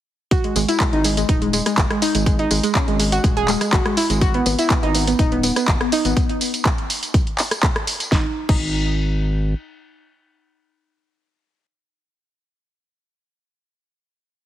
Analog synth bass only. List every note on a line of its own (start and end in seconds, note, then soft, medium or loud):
0.56 0.65 G#1 loud
0.93 1.24 G#1 loud
1.29 1.61 D#1 medium
1.78 1.87 G#1 loud
2.15 2.46 G#1 loud
2.51 2.60 G#1 loud
2.88 3.19 G#1 loud
3.24 3.56 D#1 medium
3.73 3.82 G#1 loud
4.10 4.41 G#1 loud
4.46 4.55 G#1 loud
4.83 5.14 G#1 loud
5.19 5.51 D#1 medium
5.68 5.77 G#1 loud
6.05 6.14 G#1 loud
8.12 8.26 G#1 loud
8.49 9.54 G#1 loud